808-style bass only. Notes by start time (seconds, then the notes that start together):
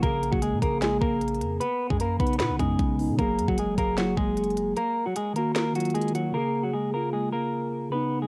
0.03 A#1
0.33 G#1
0.52 A#2
0.62 A#1
1.02 A#1
1.41 F2
1.90 F#2
2.20 B1
2.40 B2
2.50 B1
2.59 F#2
2.79 B1
3.09 B2
3.19 F#1
3.38 F#2
3.48 F#1
3.78 F#1
4.17 F#1